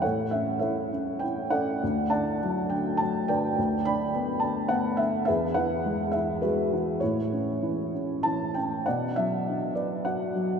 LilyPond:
<<
  \new Staff \with { instrumentName = "Felt piano" } { \time 3/4 \key a \mixolydian \tempo 4 = 102 << { fis''8 e''8 e''4 g''8 fis''8~ | fis''8 a''4 g''8 a''8 g''8~ | g''8 b''4 a''8 fis''8 e''8 | e''8 fis''4 e''8 b'4 |
cis''2 a''8 g''8 | \key b \minor fis''8 e''4 d''8 fis''4 | } \\ { <a' cis''>4 <a' cis''>4. <a' d''>8~ | <a' d''>8 <d'' fis''>4. r8 <b' d''>8~ | <b' d''>8 <d'' g''>4. r4 | <gis' b'>8 b'4. <fis' gis'>4 |
e'2~ e'8 r8 | d''4. r4. | } >> }
  \new Staff \with { instrumentName = "Felt piano" } { \clef bass \time 3/4 \key a \mixolydian a,8 cis'8 e'8 cis'8 e'8 cis'8 | d,8 d8 fis8 d8 fis8 d8 | d,8 d8 b8 d8 b8 d8 | e,8 e8 gis8 e8 gis8 e8 |
a,8 cis'8 e8 cis'8 e8 cis'8 | \key b \minor b,8 fis8 d'8 b'8 fis'8 fis8 | }
>>